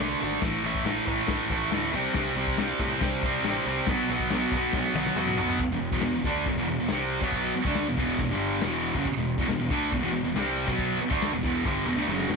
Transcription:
Already playing: D3
0.00 C2 A3 D4
0.20 G#1 D3 A3 D4
0.42 A1 A2 E3 A3, kick, snare, crash
0.62 A1 A2 E3
0.66 A3
0.75 kick
0.84 A1 A2 E3 A3, snare, crash
1.06 A1 A2 E3 A3, kick
1.27 A1 A2 E3 A3, kick, snare, crash
1.50 A1 A2 E3 A3, kick
1.70 D2 A2 E3, snare, crash
1.74 A3
1.93 C2 C3 G3 C4
2.13 C2 C3 G3 C4, kick, snare, crash
2.35 C2 C3 G3 C4
2.47 kick
2.58 C2 C3 G3 C4, snare, crash
2.79 A2 C3 G3 C4, kick
3.00 C2 C3 G3 C4, kick, snare, crash
3.22 C2 C3 G3 C4, kick
3.43 A1 C3 G3, snare, crash
3.47 C4
3.66 C2 C3 G3 C4
3.87 B1 B2 F#3 B3, kick, snare, crash
4.09 B1 B2 F#3 B3
4.20 kick
4.30 B1 B2 F#3 B3, snare, crash
4.51 B1 B2 F#3, kick
4.56 B3
4.73 B1 B2 F#3, kick, snare
4.77 B3
4.84 snare
4.94 B1 B2 F#3 B3, high tom
5.06 high tom
5.15 E2 B2 F#3 B3, mid tom
5.28 mid tom
5.36 B1 B2 F#3 B3, floor tom
5.49 floor tom
5.59 kick, crash
5.68 E1
5.72 E2 B2
5.92 E1 E2 B2, kick
6.01 E1 E2 B2, snare, crash
6.12 E1 E2 B2
6.24 D2 D3 A3 D4, kick
6.46 E1 E2 B2, kick, crash
6.57 E1 E2 B2
6.69 E1 E2 B2
6.80 E1 E2 B2
6.89 C2 C3 G3 C4, snare, crash
7.21 B1 B2 F#3 B3, kick
7.32 kick, crash
7.55 muted distorted electric guitar stroke, muted picked electric bass stroke
7.65 D2 D3 A3 D4, kick
7.75 snare, crash
7.88 E1 E2 B2
7.97 E1 E2 B2 E3, kick
8.18 E1 E2 B2, kick, crash
8.30 G1 G2 D3 G3
8.62 E1 E2 B2, snare, crash
8.66 E3
8.95 F#1 F#2 C#3, kick
9.05 kick, crash
9.17 E1 E2 B2
9.37 E1 E2 B2, kick
9.48 E1 E2 B2, snare, crash
9.59 E1 E2 B2
9.70 D2 D3 A3 D4, kick
9.91 E1 E2 B2, kick, crash
10.00 E1 E2 B2
10.12 E1 E2 B2
10.23 E1 E2 B2
10.35 C2 C3 G3 C4, snare, crash
10.67 B1 B2 F#3 B3, kick
10.79 kick, crash
11.00 muted distorted electric guitar stroke, muted picked electric bass stroke
11.10 D2 D3 A3 D4, kick
11.22 snare, crash
11.32 E1 E2 B2
11.43 E1 E2 B2 E3, kick
11.65 G1 G2 D3 G3, kick, crash
11.85 E1 E2 B2
11.95 D2 D3 A3
12.07 F#1 F#2 C#3 F#3, snare
12.19 snare
12.28 E1 E2 B2, snare

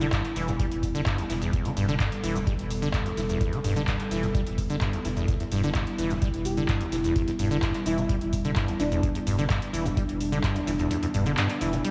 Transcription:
Already playing: G3 B3 E4
0.01 D3, closed hi-hat, cabasa
0.12 G2, kick, clap, closed hi-hat, cabasa
0.24 clap, closed hi-hat
0.36 E1 E3, open hi-hat, cabasa
0.48 E1, closed hi-hat, cabasa
0.59 G3, kick, closed hi-hat, cabasa
0.72 E1, closed hi-hat
0.83 E1, kick, open hi-hat, cabasa
0.95 D3, closed hi-hat, cabasa
1.06 G2, kick, clap, closed hi-hat, cabasa
1.18 D2, closed hi-hat
1.30 E1 E3, open hi-hat, cabasa
1.42 E2, closed hi-hat, cabasa
1.53 E2 A4, kick, closed hi-hat, cabasa
1.65 E3, closed hi-hat
1.77 E1 G2, open hi-hat, cabasa
1.88 D3, closed hi-hat, cabasa
2.00 G2, kick, clap, closed hi-hat, cabasa
2.12 closed hi-hat
2.23 E1 E3, open hi-hat, cabasa
2.35 E1, closed hi-hat, cabasa
2.47 G3, kick, closed hi-hat, cabasa
2.59 E1, closed hi-hat
2.70 E1, open hi-hat, cabasa
2.82 D3, closed hi-hat, cabasa
2.94 G2, kick, clap, closed hi-hat, cabasa
3.06 D2, closed hi-hat
3.17 E1 E3, open hi-hat, cabasa
3.29 E2, closed hi-hat, cabasa
3.41 E2, kick, closed hi-hat, cabasa
3.53 E3, closed hi-hat
3.64 E1 G2, open hi-hat, cabasa
3.76 D3, closed hi-hat, cabasa
3.87 G2, kick, clap, closed hi-hat, cabasa
3.99 clap, closed hi-hat
4.11 E1 E3, open hi-hat, cabasa
4.23 E1, closed hi-hat, cabasa
4.34 G3, kick, closed hi-hat, cabasa
4.47 E1, closed hi-hat
4.58 E1, kick, open hi-hat, cabasa
4.70 D3, closed hi-hat, cabasa
4.81 G2, kick, clap, closed hi-hat, cabasa
4.93 D2, closed hi-hat
5.05 E1 E3, open hi-hat, cabasa
5.17 E2, closed hi-hat, cabasa
5.28 E2 E4, kick, closed hi-hat, cabasa
5.40 E2, closed hi-hat
5.52 E1 G2, open hi-hat, cabasa
5.64 D3, closed hi-hat, cabasa
5.75 G2, kick, clap, closed hi-hat, cabasa
5.87 closed hi-hat
5.98 E1 E3, open hi-hat, cabasa
6.10 E1, closed hi-hat, cabasa
6.22 G3, kick, closed hi-hat, cabasa
6.34 E1, closed hi-hat
6.45 E1 G4, open hi-hat, cabasa
6.57 D3, closed hi-hat, cabasa
6.68 G2, kick, clap, closed hi-hat, cabasa
6.81 D2, closed hi-hat
6.92 E1 E3, open hi-hat, cabasa
7.04 E2, closed hi-hat, cabasa
7.16 E2, kick, closed hi-hat, cabasa
7.28 E2, closed hi-hat
7.39 E1 G2, open hi-hat, cabasa
7.51 D3, closed hi-hat, cabasa
7.62 G2, kick, clap, closed hi-hat, cabasa
7.74 clap, closed hi-hat
7.86 E1 E3 E4, open hi-hat, cabasa
7.98 E1, closed hi-hat, cabasa
8.09 G3, kick, closed hi-hat, cabasa
8.21 E1, closed hi-hat
8.33 E1, kick, open hi-hat, cabasa
8.45 D3, closed hi-hat, cabasa
8.56 G2, kick, clap, closed hi-hat, cabasa
8.68 D2, closed hi-hat
8.80 E1 E3 D4, open hi-hat, cabasa
8.92 E2 D4, closed hi-hat, cabasa
9.03 D4, kick, closed hi-hat, cabasa
9.15 E2, closed hi-hat
9.26 E1 G2, open hi-hat, cabasa
9.38 D3, closed hi-hat, cabasa
9.50 G2, kick, clap, closed hi-hat, cabasa
9.62 closed hi-hat
9.73 E1 E3, open hi-hat, cabasa
9.85 E1, closed hi-hat, cabasa
9.97 G3, kick, closed hi-hat, cabasa
10.09 E1, closed hi-hat
10.20 E1, open hi-hat, cabasa
10.32 D3, closed hi-hat, cabasa
10.44 G2, kick, clap, closed hi-hat, cabasa
10.56 D2, closed hi-hat
10.67 E1 E3, open hi-hat, cabasa
10.79 E2, closed hi-hat, cabasa
10.91 E2, closed hi-hat, cabasa
11.02 E2, closed hi-hat
11.14 E1 G2, open hi-hat, cabasa
11.26 D3, closed hi-hat, cabasa
11.37 G2, clap, closed hi-hat, cabasa
11.49 clap, closed hi-hat
11.61 E1 E3, open hi-hat, cabasa
11.73 E1, closed hi-hat, cabasa
11.85 G3, closed hi-hat, cabasa

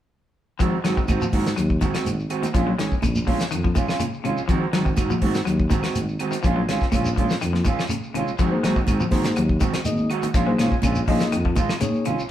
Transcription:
0.59 G#1 D#3 F3 G#3 C4 F#4, kick, closed hi-hat, shekere
0.84 G#1 D#3 F#3 G#3 C4 F#4, snare, closed hi-hat, claves
0.97 D#3, kick, shekere
1.08 G#2 D#3 C4 F#4, muted clean electric guitar stroke, kick, closed hi-hat, high conga, claves, shekere
1.22 F3, high conga, shekere
1.32 G#2 D#3 G#3 C4 F#4, kick, open hi-hat, high conga
1.46 snare, closed hi-hat, shekere
1.56 D#2 F#3, closed hi-hat, claves, shekere
1.70 kick
1.81 D#3 G#3 C4 F#4, kick, closed hi-hat, high conga, shekere
1.94 G#1 G#3 C4 F#4, snare, closed hi-hat, claves, shekere
2.05 G#1, closed hi-hat, high conga, shekere
2.20 shekere
2.30 D#3 G#3 C4 F#4, closed hi-hat, claves, shekere
2.42 D#3, closed hi-hat, high conga, shekere
2.54 A#1 F3 G#3 C#4 F4, kick, closed hi-hat, shekere
2.67 F#3
2.78 G#1 D#3 G#3 C#4, snare, closed hi-hat, claves
2.92 A#1, kick, shekere
3.02 A#1 C#3, kick, closed hi-hat, high conga, claves, shekere
3.16 high conga, shekere
3.27 A#1 F3 G#3 C#4 F4, kick, open hi-hat, high conga
3.40 A#1, snare, closed hi-hat, shekere
3.51 F2 D#3, closed hi-hat, claves, shekere
3.64 F3, kick, high conga
3.75 D#3 G#3 C#4 F4, kick, closed hi-hat, high conga, shekere
3.88 C#4 F4, snare, claves, shekere
3.99 C#3, closed hi-hat, high conga, shekere
4.13 shekere
4.24 G#1 C3 G#3 C#4 F4, closed hi-hat, claves, shekere
4.37 A#1, shekere
4.48 G#1 D#3 F3 G#3 C4 F#4, kick, closed hi-hat, shekere
4.72 G#1 D#3 F#3 C4 F#4, snare, closed hi-hat, claves
4.85 D#3, kick, shekere
4.97 G#2 D#3 G#3 F#4, muted clean electric guitar stroke, kick, closed hi-hat, high conga, claves, shekere
5.10 F3, high conga, shekere
5.21 G#2 D#3 C4 F#4, kick, open hi-hat, high conga
5.35 snare, closed hi-hat, shekere
5.45 D#2 F#3, closed hi-hat, claves, shekere
5.60 kick
5.70 D#3 G#3 C4 F#4, kick, closed hi-hat, high conga, shekere
5.83 G#1 G#3 C4 F#4, snare, closed hi-hat, claves, shekere
5.95 G#1, closed hi-hat, high conga, shekere
6.08 shekere
6.19 D#3 G#3 C4 F#4, closed hi-hat, claves, shekere
6.31 D#3, closed hi-hat, shekere
6.43 A#1 F3 G#3 C#4 F4, kick, closed hi-hat, shekere
6.56 F#3
6.68 G#1 G#3 C#4 F4, snare, closed hi-hat, claves
6.80 A#1, kick, snare, shekere
6.92 A#1 C#3 G#3 C#4 F4, kick, closed hi-hat, high conga, claves, shekere
7.05 shekere
7.16 A#1 F3 G#3 C#4 F4, kick, closed hi-hat, high conga
7.30 A#1, snare, closed hi-hat, shekere
7.41 F2 D#3, closed hi-hat, claves, shekere
7.53 F3, snare, high conga
7.64 D#3 G#3 C#4 F4, kick, closed hi-hat, high conga, shekere
7.78 snare, claves, shekere
7.89 C#3, closed hi-hat, high conga, shekere
8.03 shekere
8.14 G#1 C3 G#3 C#4 F4, closed hi-hat, claves, shekere
8.27 A#1, shekere
8.39 G#1 D#3 F3 G#3 C4 F#4, kick, closed hi-hat, shekere
8.52 A#3 D#4 G#4 C5
8.63 G#1 D#3 F#3 G#3 C4 F#4, snare, closed hi-hat, claves
8.76 D#3, kick, shekere
8.87 G#2 D#3 G#3 C4 F#4, kick, closed hi-hat, high conga, claves, shekere
8.99 F3, high conga, shekere
9.11 G#2 D#3 G#3 A#3 C4 D#4 F#4 G#4 C5, kick, snare, open hi-hat, high conga
9.24 snare, closed hi-hat, shekere
9.36 D#2 F#3, closed hi-hat, claves, shekere
9.49 kick
9.60 D#3 G#3 C4 F#4, kick, closed hi-hat, high conga, shekere
9.73 G#1, snare, closed hi-hat, claves, shekere
9.85 G#1 A#3 D#4 G#4 D#5, closed hi-hat, high conga, shekere
9.97 high conga, shekere
10.10 D#3 G#3 F#4, closed hi-hat, claves, shekere
10.22 D#3, closed hi-hat, high conga, shekere
10.34 A#1 F3 G#3 C#4 F4, kick, snare, closed hi-hat, shekere
10.46 F#3 A#3 D#4 G#4 C5
10.58 G#1 A#2 G#3 C#4 F4, snare, closed hi-hat, claves
10.72 A#1, kick, shekere
10.82 A#1 C#3 G#3 C#4 F4, kick, closed hi-hat, high conga, claves, shekere
10.95 shekere
11.07 A#1 F3 G#3 A#3 C#4 D#4 F4 G#4 D#5, kick, open hi-hat, high conga
11.20 A#1, snare, closed hi-hat, shekere
11.32 F2 D#3, closed hi-hat, claves, shekere
11.45 F3, kick
11.56 D#3 G#3 F4, muted clean electric guitar stroke, kick, closed hi-hat, high conga, shekere
11.69 snare, claves, shekere
11.81 C#3 A#3 D#4 G#4 C#5, closed hi-hat, high conga, shekere
11.95 shekere
12.05 G#1 C3 C#4 F4, closed hi-hat, claves, shekere
12.19 A#1, shekere

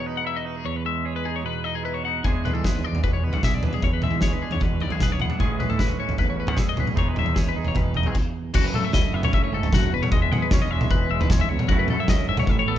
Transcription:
Already playing: E2 B2 G#3 G#4
0.06 D#4 B4
0.17 F#5
0.25 E4 E5
0.35 F#4 D#5
0.45 D#4 B4
0.56 G#4
0.65 E2 C#5
0.76 B4
0.85 G#3 E5
1.05 G#4 C#5
1.16 B4
1.25 D#4 G#4
1.36 C#5
1.44 B2 B4
1.64 D#4 D#5
1.75 G#4
1.84 E4 B4
1.94 F#4 C#5
2.05 D#4 F#5
2.24 E2 E3 G#3 D4 G#4, kick, floor tom
2.44 G#3 B4, floor tom, mid tom
2.53 E3 A4, floor tom
2.64 G#4 B4, kick, snare
2.75 floor tom
2.84 D4 D5
2.92 E2, floor tom
3.03 E2 B2 B4, kick, floor tom
3.13 C#5
3.24 B3 B4
3.33 B1 D4 F#5, floor tom
3.43 B1 G#4 E5, kick, snare, mid tom
3.54 D5
3.63 E2 D4 B4, floor tom, mid tom
3.73 G#4, mid tom
3.82 E2 C#5, kick, floor tom
3.94 B4
4.02 G#3 E5, floor tom, mid tom
4.11 E3, floor tom
4.21 G#4 C#5, kick, snare
4.31 B4, floor tom
4.42 D4 G#4
4.51 E2 C#5, floor tom
4.60 E2 B2 B4, kick, floor tom
4.80 B3 D5, floor tom
4.90 B1 D4 G#4, floor tom
5.00 B1 G#4 B4, kick, snare, mid tom
5.10 C#5, floor tom
5.19 E2 B3 F#5, floor tom, mid tom
5.30 D4, mid tom
5.39 A1 A2 E3 G#3 C#4 G#4, kick, floor tom
5.58 G#3 B4, floor tom, mid tom
5.69 A2 A4, floor tom
5.77 E4 B4, kick, snare
5.88 F#4, floor tom
5.99 C#4 C#5
6.08 A1, floor tom
6.18 A1 E2 B4, kick, floor tom
6.30 C#5
6.37 C#4 B4
6.47 E2 F#5, floor tom
6.56 E2 G#4 E5, kick, snare, mid tom
6.69 D#5
6.76 F#1 C#4 B4, floor tom, mid tom
6.87 G#4, mid tom
6.94 E1 E2 E3 G#3 D#4 G#4, kick, floor tom
6.99 C#5
7.09 B4
7.15 G#3 E5, floor tom, mid tom
7.26 E2, floor tom
7.34 G#4 C#5, kick, snare
7.45 B4, floor tom
7.56 D#4 G#4
7.65 E1 C#5, floor tom
7.75 E1 B2 B4, kick, floor tom
7.94 D#4 D#5, floor tom
8.03 B1 G#4, floor tom
8.15 kick, crash
8.54 F#1 F#2 F#4, kick, floor tom, crash
8.64 B4
8.74 F#2 A3 A4, mid tom
8.85 E5
8.93 C#2 E4 D#5, kick, snare, floor tom
9.12 F#1 B3 E5
9.23 C#4 C#5, floor tom, mid tom
9.33 F#1 A3 E5, kick
9.44 C#5
9.52 F#1 G#2 A4
9.63 floor tom
9.72 F#1 F#2 F#4, kick, snare, mid tom
9.83 floor tom
9.91 E1 E2 B4
10.02 C#5, mid tom
10.11 E1 G#3 D#5, kick, floor tom
10.22 E5
10.30 E2 G#4 F#5, mid tom
10.42 B4
10.51 B1 C#4 C#5, kick, snare, floor tom
10.62 D#5
10.69 E1 G#3 E5
10.81 floor tom, mid tom
10.90 E1 E3 B4, kick
11.10 E1 G#3 E5
11.21 B4, floor tom
11.30 E1 E3 C#5, kick, snare, mid tom
11.40 E5, floor tom
11.49 C#2 E2 C#5
11.59 mid tom
11.68 F#1 F#2 F#3 A3 C#4 F#4, kick, floor tom
11.72 E4
11.79 B4
11.88 F#2 A3 A4, mid tom
12.00 E5
12.08 C#2 F#2 D#5, kick, snare, floor tom
12.27 F#1 G#2 E5
12.37 C#5, floor tom, mid tom
12.47 A1 A2 E5, kick
12.59 C#5
12.66 A1 B3 A4

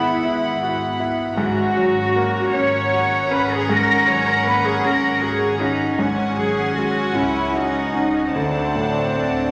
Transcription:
Already playing: G#1 G#2 G#3 B3 E4 F#5 B5
0.25 E4
0.63 F#4
1.00 E4
1.37 G#1 G#2 C#4 F#4 F#5 A#5
1.76 F#3
2.16 A#3
2.54 C#4 C#5
2.93 F#4
3.31 C#4 B4
3.52 G#4
3.69 G#2 A#4
4.07 F#3 C#5
4.28 A#4
4.47 A#3 B4
4.66 G#4
4.84 C#4 A#4
5.22 F#4 G#4
5.60 C#4 D#4
5.99 G#1 G#2 C#4 F#5 G#5
6.38 F#3 G#4
6.77 G#3 F#4
7.16 C#2 C#4 E4
7.56 D#4 F#4
7.95 C#4
8.34 D2 C4 D4 F#5 A5
8.75 A2
9.17 A3

